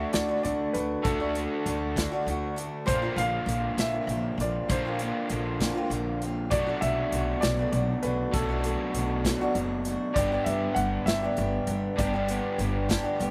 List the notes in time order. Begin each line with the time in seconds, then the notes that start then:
Already playing: D3 A3 D4 F#4 E5
0.13 D2 D3 A3 D4 F#4 D5, snare, closed hi-hat
0.28 A3 D4 F#4
0.43 D2 D3 A3 D4 F#4 D5, closed hi-hat
0.73 D2 D3 A3 D4 F#4 B4, closed hi-hat
1.03 D2 D3 A3 D4 A4, kick, closed hi-hat
1.07 F#4
1.20 A3 D4 F#4
1.35 D3 A3 D4 F#4, closed hi-hat
1.66 D2 D3 A3 D4 F#4, closed hi-hat
1.96 D3 A3 D4 F#4, kick, snare, closed hi-hat
2.12 A3 D4 F#4
2.26 D2 D3 A3 D4 F#4, closed hi-hat
2.56 D3 A3 D4 F#4, closed hi-hat
2.86 A#1 A#2 D3 A#3 C4 D4 F4 C5, kick, closed hi-hat
3.02 A#3 C4 F4
3.16 A#1 D3 A#3 C4 F4 F5, closed hi-hat
3.46 A#1 D3 A#3 C4 F4, closed hi-hat
3.77 A#1 A#2 D3 A#3 C4 F4 E5, snare, closed hi-hat
3.92 A#3 C4 F4
4.07 A#1 D3 A#3 C4, closed hi-hat
4.12 F4
4.38 A#1 D3 A#3 C4 D5, closed hi-hat
4.42 F4
4.69 A#1 A#2 D3 A#3 C4 D4 F4 C5, kick, closed hi-hat
4.85 A#3 C4 F4
4.99 D3 A#3 C4, closed hi-hat
5.03 F4
5.30 A#1 D3 A#3 C4 F4, closed hi-hat
5.60 A#2 D3 A#3 C4 F4, kick, snare, closed hi-hat
5.75 A#3 C4 F4
5.90 A#1 D3 A#3 C4 F4, closed hi-hat
6.22 D3 A#3 C4 F4, closed hi-hat
6.51 B1 B2 F#3 A3 B3 D4 F#4 D5, kick, closed hi-hat
6.67 A3 D4 F#4
6.81 B1 F#3 A3 D4 E5, closed hi-hat
6.85 F#4
7.12 B1 F#3 A3 D4 F#4, closed hi-hat
7.41 B1 B2 F#3 A3 D5, snare, closed hi-hat
7.45 D4 F#4
7.59 A3 D4 F#4
7.72 B1 F#3 A3 D4 D5, closed hi-hat
7.76 F#4
8.02 B1 F#3 A3 D4 F#4 B4, closed hi-hat
8.34 B1 B2 F#3 A3 B3 D4 F#4 A4, kick, closed hi-hat
8.49 A3 D4 F#4
8.64 F#3 A3 D4 F#4, closed hi-hat
8.94 B1 F#3 A3 D4, closed hi-hat
8.99 F#4
9.25 B2 F#3 A3 D4 F#4, kick, snare, closed hi-hat
9.41 A3 D4 F#4
9.55 F#1 F#3 A3 D4 F#4, closed hi-hat
9.85 F#3 A3 D4, closed hi-hat
9.90 F#4
10.14 G1 G2 D3 G3 B3 D5, kick, closed hi-hat
10.18 D4 G4
10.32 G3 B3 D4 G4
10.44 G1 G3 E5, closed hi-hat
10.49 B3 D4 G4
10.75 G1 G3 F#5, closed hi-hat
10.79 B3 D4 G4
11.06 G1 G2 D3 G3 B3 D4 E5, snare, closed hi-hat
11.10 G4
11.22 G3 B3 D4 G4
11.37 G1 G3 B3 D4 G4, closed hi-hat
11.67 G1 G3 B3 D4, closed hi-hat
11.72 G4
11.98 G1 G2 D3 G3 B3 D4 G4 D5, kick, closed hi-hat
12.13 G3 B3 D4 G4
12.28 G3 B3 D4 G4, closed hi-hat
12.58 G1 G3 B3 D4 G4, closed hi-hat
12.89 G2 D3 G3 B3 D4 G4, kick, snare, closed hi-hat
13.03 G3 B3 D4 G4
13.20 G1 G3 B3 D4 G4, closed hi-hat